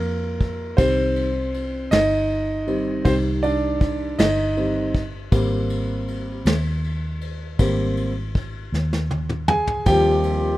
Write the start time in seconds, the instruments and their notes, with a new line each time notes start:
Already playing: fingered electric bass F2, grand piano A#3 A#4
0.03 ride
0.40 kick, ride
0.77 fingered electric bass C2, grand piano D#3 G3 C4 C5, kick, ride
1.16 ride
1.54 ride
1.91 fingered electric bass G1, grand piano D#4 D#5, snare, ride
2.30 ride
2.67 grand piano D#3 G3 C4, ride
3.05 fingered electric bass C2, grand piano D#3 G3 C4 C5, kick, ride
3.43 grand piano D4 D5, ride
3.81 kick, ride
4.18 fingered electric bass G1, grand piano D#4 D#5, snare, ride
4.57 grand piano D#3 G3 C4, ride
4.94 kick, ride
5.32 fingered electric bass G#1, grand piano G3 A#3 C4, kick, ride
5.70 ride
6.08 ride
6.45 fingered electric bass D#2, snare, ride
6.84 ride
7.21 ride
7.59 fingered electric bass G#1, grand piano G3 A#3 C4, kick, ride
7.97 ride
8.35 kick, ride
8.72 fingered electric bass D#2, snare
8.93 snare
9.11 high tom
9.29 mid tom
9.48 grand piano G#4 G#5, mid tom
9.67 floor tom
9.86 fingered electric bass D#2, woodwind section D#3 A#3 C4 F4 G4, grand piano F3 G3 C4 G4 G5, kick, ride
10.24 ride